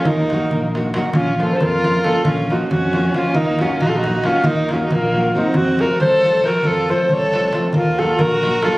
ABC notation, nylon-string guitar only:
X:1
M:5/8
L:1/8
Q:1/4=137
K:none
V:1 name="Nylon-string guitar"
z [_G,_B,_E_G] z [G,B,EG] [G,B,EG] | z [F,_B,_DF] z [F,B,DF] [F,B,DF] | z [F,_B,_DF] z [F,B,DF] [F,B,DF] | z [_G,_B,_E_G] z [G,B,EG] [G,B,EG] |
z [_G,_B,_E_G] z [G,B,EG] [G,B,EG] | z [F,A,CF] z [F,A,CF] [F,A,CF] | z [F,A,CF] z [F,A,CF] [F,A,CF] | z [_G,_B,_E_G] z [G,B,EG] [G,B,EG] |]